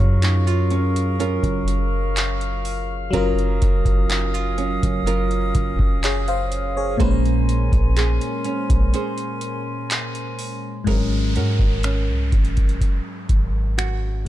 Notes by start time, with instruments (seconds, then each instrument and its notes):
Already playing: fm electric piano F#3 C#4 F4 G#4 A#4 C#5, nylon-string guitar F#3 C#4 F#4 A#4, woodwind section A#4 D#5 F5 C#6
0.00 808-style bass F#2
0.22 nylon-string guitar D#4, clap, closed hi-hat
0.47 nylon-string guitar F4, closed hi-hat
0.70 nylon-string guitar C#4, closed hi-hat
0.96 closed hi-hat
1.20 nylon-string guitar C#4 F4 A#4, closed hi-hat
1.43 808-style bass F#1, kick, closed hi-hat
1.68 closed hi-hat
2.17 clap, closed hi-hat
2.41 closed hi-hat
2.65 open hi-hat
3.11 808-style bass F#1, fm electric piano F#3 C#4, nylon-string guitar F#3 A#4, woodwind section C#4 D#5 D#6, kick, closed hi-hat
3.15 fm electric piano F4 A#4
3.39 closed hi-hat
3.62 808-style bass F#1, kick, closed hi-hat
3.85 kick, closed hi-hat
4.10 nylon-string guitar D#4, clap, closed hi-hat
4.34 nylon-string guitar F4, closed hi-hat
4.58 nylon-string guitar C#4, closed hi-hat
4.83 808-style bass F#1, kick, closed hi-hat
5.06 nylon-string guitar C#4 F4 A#4, closed hi-hat
5.31 closed hi-hat
5.55 808-style bass F#1, kick, closed hi-hat
5.79 kick
6.04 fm electric piano G#4 C#5, clap, closed hi-hat
6.28 fm electric piano C5 F5, closed hi-hat
6.52 closed hi-hat
6.77 fm electric piano G#4 C#5
6.97 808-style bass A#1, fm electric piano A#2 G#3, nylon-string guitar A#3 C5, woodwind section C#4 A#4 G#5 C6, kick, closed hi-hat
7.02 fm electric piano C#4 B4
7.11 fm electric piano C5
7.25 closed hi-hat
7.49 closed hi-hat
7.72 808-style bass A#1, kick, closed hi-hat
7.97 nylon-string guitar G#4, clap, closed hi-hat
8.21 closed hi-hat
8.44 nylon-string guitar C#4, closed hi-hat
8.70 808-style bass A#1, kick, closed hi-hat
8.94 nylon-string guitar C#4 G#4 C5, closed hi-hat
9.18 closed hi-hat
9.41 closed hi-hat
9.91 clap, closed hi-hat
10.15 closed hi-hat
10.39 open hi-hat
10.84 808-style bass G#1, fm electric piano G#2 F#3, nylon-string guitar G#3 A#4, kick, closed hi-hat, downlifter
10.89 fm electric piano C4 A#4
10.95 fm electric piano C#4
11.36 808-style bass G#2, nylon-string guitar C#4 F#4 A#4, closed hi-hat
11.59 808-style bass G#1, kick
11.83 nylon-string guitar C#4, finger snap, closed hi-hat
12.09 808-style bass C2
12.32 808-style bass G#1, kick, closed hi-hat
12.45 closed hi-hat
12.57 kick, closed hi-hat
12.69 closed hi-hat
12.81 kick, closed hi-hat
13.29 808-style bass G#1, kick, closed hi-hat
13.78 nylon-string guitar F#4, finger snap, closed hi-hat